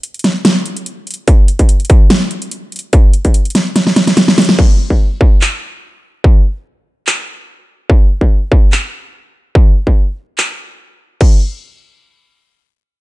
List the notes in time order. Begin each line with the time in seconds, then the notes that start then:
0.03 closed hi-hat
0.14 closed hi-hat
0.19 closed hi-hat
0.24 snare, closed hi-hat
0.45 snare, closed hi-hat
0.66 closed hi-hat
0.77 closed hi-hat
0.86 closed hi-hat
1.07 closed hi-hat
1.11 closed hi-hat
1.14 closed hi-hat
1.27 kick, closed hi-hat
1.48 closed hi-hat
1.59 kick, closed hi-hat
1.69 closed hi-hat
1.80 closed hi-hat
1.85 closed hi-hat
1.90 kick, closed hi-hat
2.10 snare, closed hi-hat
2.31 closed hi-hat
2.42 closed hi-hat
2.51 closed hi-hat
2.72 closed hi-hat
2.76 closed hi-hat
2.79 closed hi-hat
2.93 kick, closed hi-hat
3.13 closed hi-hat
3.25 kick, closed hi-hat
3.34 closed hi-hat
3.45 closed hi-hat
3.50 closed hi-hat
3.55 snare, closed hi-hat
3.76 snare, closed hi-hat
3.87 snare
3.96 snare, closed hi-hat
4.07 snare, closed hi-hat
4.17 snare, closed hi-hat
4.28 snare
4.38 snare, closed hi-hat
4.42 closed hi-hat
4.45 closed hi-hat
4.49 snare
4.58 kick, crash
4.90 kick
5.21 kick
5.41 clap
6.24 kick
7.07 clap
7.90 kick
8.21 kick
8.52 kick
8.72 clap
9.55 kick
9.87 kick
10.38 clap
11.21 kick, crash